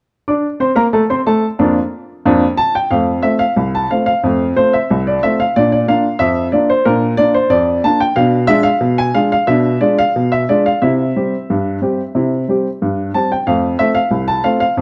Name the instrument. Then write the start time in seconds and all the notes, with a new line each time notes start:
upright piano
0.28 D4 D5 D6
0.60 C4 C5 C6
0.75 A#3 A#4 A#5
0.93 A3 A4 A5
1.10 C4 C5 C6
1.27 A3 A4 A5
1.59 F2 A#3 D4 F4
2.25 F2 A#3 D4 F4
2.57 A5
2.75 G5
2.91 F2 A3 F5
3.23 A3 C4 F4 E5
3.39 F5
3.56 C2
3.75 A5
3.91 A3 C4 F4 F5
4.06 F5
4.23 F2 A3
4.56 A3 C4 F4 C5
4.73 E5
4.90 C2
5.07 D5
5.23 A3 C4 F4 E5
5.40 F5
5.56 A#2 D4 D5
5.72 D5
5.88 A#3 D4 F4 F5
6.19 F2 E5
6.52 A#3 D4 F4 D5
6.70 C5
6.85 A#2 D4 A#4
7.17 A#3 D4 F4 D5
7.34 C5
7.50 F2 D5
7.84 A#3 D4 F4 A5
8.00 G5
8.16 B2 D4 F5
8.47 G#3 D4 F4 E5
8.63 F5
8.81 B2
8.98 G#5
9.14 G#3 D4 F4 F5
9.32 F5
9.47 B2 D4 E5
9.81 G#3 D4 F4 D5
9.98 F5
10.16 B2
10.32 E5
10.49 G#3 D4 F4 D5
10.66 F5
10.82 C3 E4 E5
11.16 G3 C4 G4
11.50 G2
11.82 G3 C4 G4
12.15 C3 E4
12.48 G3 C4 G4
12.82 G2
13.14 G3 C4 G4 A5
13.32 G5
13.47 F2 A3 F5
13.79 A3 C4 F4 E5
13.95 F5
14.11 C2
14.28 A5
14.44 A3 C4 F4 F5
14.60 F5
14.77 F2